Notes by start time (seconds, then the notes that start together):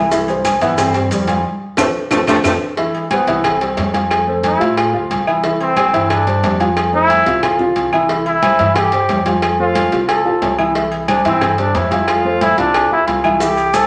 Already playing: C2
0.11 G2 E3 E4 E5, cowbell, high conga, maracas
0.28 G3 G4 C5, high conga, low agogo, maracas
0.45 cowbell, high conga, low agogo, claves, maracas
0.61 G2 E3 B3 E4 E5, cowbell, high conga, low agogo, maracas
0.78 E3 G3 C4, cowbell, high conga, low conga, low agogo, claves, maracas
0.94 G3 G4 C5, cowbell, high conga, low conga, maracas
1.11 F2 D3 E3 G3 G4 C5, cowbell, high conga, low agogo, maracas
1.28 F3 F4 F5, cowbell, high conga, low agogo, maracas
1.77 F2 C3 F3 A3 C4 F4 A4, cowbell, low conga, high timbale, claves, maracas
2.11 F2 C3 F3 A3 C4 F4 A4, cowbell, low conga, high timbale, claves, maracas
2.27 F2 C3 F3 A3 C4 F4 A4, cowbell, low conga, high timbale, claves, maracas
2.44 F2 C3 F3 A3 C4 F4 A4, cowbell, low conga, high timbale, claves, maracas
2.77 E3 E4 E5, cowbell, high conga
2.94 high conga, low agogo
3.10 G3 B3 G4 C5, cowbell, high conga, low agogo, claves
3.27 C2 E3 E4 E5, cowbell, high conga, low agogo
3.44 C4, cowbell, high conga, low conga, low agogo, claves
3.61 G3 G4 C5, cowbell, high conga
3.77 F2, cowbell, high conga, low timbale, low agogo
3.94 F3 F4 F5, cowbell, high conga, low agogo
4.11 cowbell, high conga, low agogo, claves
4.27 A3 A4 C5, high conga
4.44 E4, cowbell, high conga, low agogo
4.60 A2 F3 F4 F5, cowbell, high conga
4.77 F4, cowbell, high conga, low agogo, claves
4.93 D2 F3 F4 F5, high conga
5.10 C2, cowbell, high conga, low agogo
5.27 E3 E4 E5, low agogo, claves
5.44 E3 E4 E5, cowbell, high conga
5.60 C4, high conga, low agogo
5.76 G3 G4 C5, cowbell, high conga, low agogo, claves
5.93 G2 E3 E4 E5, cowbell, high conga, low agogo
6.10 D4, cowbell, high conga, low conga, low agogo, claves
6.27 G3 G4 C5, cowbell, high conga, low conga
6.43 F2, cowbell, high conga, low timbale, low agogo
6.60 F3 F4 F5, cowbell, high conga, low agogo
6.77 cowbell, high conga, low agogo, claves
6.93 A3 E4 A4 C5, high conga
7.10 cowbell, high conga, low agogo
7.26 C2 F3 F4 F5, cowbell, low conga
7.43 F4, cowbell, low conga, low agogo, claves
7.59 F3 F4 F5, low conga
7.76 C2, cowbell, low conga, low agogo
7.93 E3 E4 E5, low conga, low agogo, claves
8.09 E3 E4 E5, cowbell, high conga
8.26 E4, high conga, low agogo
8.43 G3 G4 C5, cowbell, high conga, low agogo, claves
8.59 G2 E3 E4 E5, cowbell, high conga, low agogo
8.76 G4, cowbell, high conga, low conga, low agogo, claves
8.92 G3 G4 C5, cowbell, high conga, low conga
9.09 F2, cowbell, high conga, low timbale, low agogo
9.26 F3 F4 F5, cowbell, high conga, low agogo
9.42 cowbell, low agogo, claves
9.59 A3 F4 A4 C5, high conga
9.75 cowbell, high conga, low agogo
9.92 C2 F3 F4 F5, cowbell, high conga
10.09 A4, cowbell, high conga, low agogo, claves
10.25 B1 F3 F4 F5, high conga
10.42 C2, cowbell, high conga, low timbale, low agogo
10.58 E3 E4 E5, high conga, low agogo, claves
10.75 E3 E4 E5, cowbell, high conga
10.92 high conga, low agogo
11.08 G3 D4 G4 C5, cowbell, high conga, low agogo, claves
11.25 G2 E3 C4 E4 E5, cowbell, high conga, low agogo
11.41 cowbell, high conga, low conga, low agogo, claves
11.58 G3 D4 G4 C5, cowbell, high conga, low conga
11.74 F2 E4, cowbell, high conga, low timbale, low agogo
11.91 F3 F4 F5, cowbell, high conga, low agogo
12.08 F4, cowbell, high conga, low agogo, claves
12.25 A3 A4 C5, high conga
12.41 E4, cowbell, high conga, low agogo
12.58 C2 F3 D4 F4 F5, cowbell, high conga
12.74 cowbell, high conga, low agogo, claves
12.91 B1 F3 E4 F4 F5, high conga
13.07 C2 F4, cowbell, high conga, low agogo
13.24 E3 E4 E5, high conga, low agogo, claves
13.40 E3 E4 G4 E5, cowbell, high conga, maracas
13.57 high conga, low agogo, maracas
13.73 G3 G4 A4 C5, cowbell, high conga, low agogo, claves, maracas